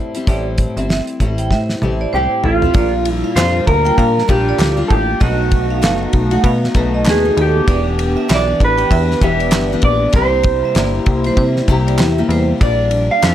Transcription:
Already playing: steel-string acoustic guitar A2 G3 C4 E4
0.15 steel-string acoustic guitar G3 C4 E4, closed hi-hat
0.27 analog synth bass A1, steel-string acoustic guitar A2 G3 C4 E4, vibraphone D5, kick, closed hi-hat
0.58 kick, closed hi-hat
0.77 analog synth bass G1, steel-string acoustic guitar G3 C4 E4, vibraphone E5, closed hi-hat
0.89 vibraphone E5, snare
1.07 closed hi-hat
1.20 analog synth bass A1, steel-string acoustic guitar A2 G3 C4 E4, kick, closed hi-hat
1.38 vibraphone G5, closed hi-hat
1.51 analog synth bass A2, vibraphone E5, kick, snare
1.69 snare
1.82 analog synth bass A1, steel-string acoustic guitar A2 G3 C4 E4, high tom
2.01 vibraphone D5
2.13 analog synth bass C2, steel-string acoustic guitar A2 G3 C4 E4, clean electric guitar G4, vibraphone C5
2.44 analog synth bass A1, clean electric guitar F4, vibraphone A4, floor tom
2.62 steel-string acoustic guitar G3 C4 E4, floor tom
2.74 analog synth bass A#1, steel-string acoustic guitar A#2 G3 D4 F4, analog synth pad G3 A#3 D4, vibraphone D5, kick, ride
3.05 clean electric guitar E4, ride
3.24 vibraphone F5
3.36 analog synth bass F2, steel-string acoustic guitar A#2 G3 D4 F4, clean electric guitar C5, vibraphone F5, snare, clap, ride
3.67 analog synth bass D2, clean electric guitar A#4, kick, ride
3.85 steel-string acoustic guitar G3 D4 F4, vibraphone G5, ride
3.98 analog synth bass A#2, vibraphone F5, kick, ride
4.18 snare
4.28 analog synth bass A#1, steel-string acoustic guitar A#2 G3 D4 F4, clean electric guitar G4, kick, ride
4.49 vibraphone D5
4.59 analog synth bass D2, snare, clap, ride
4.77 steel-string acoustic guitar G3 D4 F4
4.88 analog synth bass A1, clean electric guitar G4 A4, kick, ride
5.20 analog synth bass B1, steel-string acoustic guitar B2 A3 D#4 F#4, analog synth pad A3 B3 D#4, clean electric guitar F#4, vibraphone D#5, kick, ride
5.51 kick, ride
5.70 vibraphone F5
5.82 analog synth bass F#1, steel-string acoustic guitar B2 A3 D#4 F#4, vibraphone F5, snare, clap, ride
6.13 analog synth bass B1, kick, ride
6.31 steel-string acoustic guitar A3 D#4 F#4, vibraphone F#5, ride
6.44 analog synth bass B2, vibraphone F5, kick, ride
6.64 snare
6.75 analog synth bass B1, steel-string acoustic guitar B2 A3 D#4 F#4, kick, ride
6.94 vibraphone D#5
7.05 analog synth bass D#2, vibraphone B4, snare, clap, ride
7.10 clean electric guitar G#4
7.25 steel-string acoustic guitar B2 A3 D#4
7.37 analog synth bass D#2, vibraphone A4, ride
7.41 clean electric guitar G4
7.67 analog synth bass E1, analog synth pad E3 D4 G4, steel-string acoustic guitar E3 B3 D4 G4, vibraphone D5, kick, ride
7.99 ride
8.17 vibraphone E5
8.28 analog synth bass B1, steel-string acoustic guitar E3 B3 D4 G4, vibraphone E5, snare, clap, ride
8.34 clean electric guitar D5
8.60 analog synth bass A1, kick, ride
8.64 clean electric guitar B4
8.78 steel-string acoustic guitar B3 D4 G4, vibraphone G5, ride
8.91 analog synth bass E2, vibraphone E5, kick, ride
9.11 snare
9.21 analog synth bass E1, steel-string acoustic guitar E3 B3 D4 G4, clean electric guitar E5, kick, ride
9.40 vibraphone D5, ride
9.51 analog synth bass G1, snare, clap, ride
9.73 steel-string acoustic guitar E3 B3 D4 G4
9.82 analog synth bass A#1, clean electric guitar D5, kick, ride
10.13 analog synth bass C2, steel-string acoustic guitar C3 A#3 E4 G4, analog synth pad C3 G3 A#3 E4, clean electric guitar C5, vibraphone D5, kick, ride
10.43 kick, ride
10.65 vibraphone E5
10.75 analog synth bass G1, steel-string acoustic guitar C3 A#3 E4 G4, vibraphone D5, snare, clap, ride
11.06 analog synth bass C2, kick, ride
11.24 steel-string acoustic guitar E4 G4, vibraphone C5, ride
11.28 steel-string acoustic guitar A#3
11.37 analog synth bass C3, vibraphone C5, kick, ride
11.56 snare
11.68 analog synth bass C2, steel-string acoustic guitar C3 A#3 E4 G4, kick, ride
11.87 vibraphone D5, ride
11.98 analog synth bass E2, vibraphone E5, snare, clap, ride
12.18 steel-string acoustic guitar C3 A#3 E4 G4
12.29 analog synth bass E2, vibraphone C5, ride
12.61 analog synth bass A#1, steel-string acoustic guitar A#2 G3 D4 F4, analog synth pad D4, vibraphone D5, clean electric guitar D5, kick, ride
12.91 ride
13.11 clean electric guitar F5, vibraphone F5
13.22 analog synth bass F2, steel-string acoustic guitar A#2 G3 D4 F4, clean electric guitar E5, vibraphone F5, snare, clap, ride

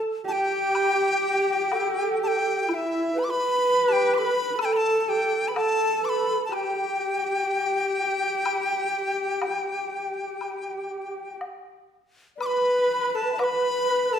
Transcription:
0.23 alto flute G4, horsehead fiddle G4, xiao G4
0.28 dizi A5
0.32 dizi G5
0.75 high woodblock
1.71 alto flute A4, xiao A4, high woodblock, low woodblock
2.20 xiao G4, dizi A5
2.28 dizi G5
2.68 horsehead fiddle E4, alto flute E4, xiao E4, dizi G5, high woodblock
2.74 dizi E5
3.14 alto flute B4, xiao B4
3.19 dizi B5
3.24 alto flute B4, dizi D6
3.29 horsehead fiddle B4, xiao B4, dizi B5
3.87 alto flute G4, dizi A5
3.92 dizi G5
4.12 xiao B4, dizi D6
4.18 xiao A4, dizi B5
4.26 xiao B4
4.51 xiao D4 E4
4.57 xiao G4 A4, alto flute A4, horsehead fiddle A4, high woodblock
4.62 dizi G5 A5
4.73 dizi A5 B5
5.00 dizi A5
5.07 alto flute G4, dizi G5
5.48 alto flute B4, dizi B5
5.54 horsehead fiddle A4, xiao A4, alto flute A4, dizi A5, high woodblock, low woodblock
6.02 alto flute B4, dizi D6
6.09 dizi B5
6.44 xiao A4, dizi A5
6.49 horsehead fiddle G4, alto flute G4, xiao G4, high woodblock
6.54 alto flute G4, dizi G5
6.66 alto flute G4
6.73 alto flute G4
6.80 alto flute G4
6.89 alto flute G4
6.96 alto flute G4
7.01 alto flute G4
7.10 alto flute G4
7.16 alto flute G4
7.23 alto flute G4
7.29 alto flute G4
7.37 alto flute G4
7.45 alto flute G4
7.54 alto flute G4
7.58 alto flute G4
7.68 alto flute G4
7.75 alto flute G4
7.83 alto flute G4
7.92 alto flute G4
7.99 alto flute G4
8.04 alto flute G4
8.14 alto flute G4
8.19 alto flute G4
8.25 alto flute G4
8.33 alto flute G4
8.42 alto flute G4, high woodblock
8.48 alto flute G4
8.57 alto flute G4
8.62 alto flute G4
8.69 alto flute G4
8.76 alto flute G4
8.83 alto flute G4
8.91 alto flute G4
8.97 alto flute G4
9.07 alto flute G4
9.13 alto flute G4
9.20 alto flute G4
9.28 alto flute G4
9.33 alto flute G4
9.41 alto flute G4, high woodblock, low woodblock
9.48 alto flute G4
9.56 alto flute G4
9.62 alto flute G4
9.69 alto flute G4
9.78 alto flute G4
9.86 alto flute G4
9.92 alto flute G4
10.01 alto flute G4
10.10 alto flute G4
10.19 alto flute G4
10.25 alto flute G4
10.33 alto flute G4
10.39 alto flute G4, high woodblock
10.47 alto flute G4
10.54 alto flute G4
10.62 alto flute G4
10.68 alto flute G4
10.75 alto flute G4
10.82 alto flute G4
10.89 alto flute G4
10.99 alto flute G4
11.08 alto flute G4
11.41 low woodblock
12.36 xiao D5
12.41 xiao B4, horsehead fiddle B4, alto flute B4, dizi D6, high woodblock
12.46 dizi B5
13.15 xiao A4, dizi A5
13.23 xiao A5 B5
13.29 xiao E5 G5
13.38 alto flute B4, xiao B4 D5, horsehead fiddle B4, dizi D6, high woodblock, low woodblock
13.44 dizi B5
14.11 xiao A4, horsehead fiddle A4, alto flute A4, dizi A5

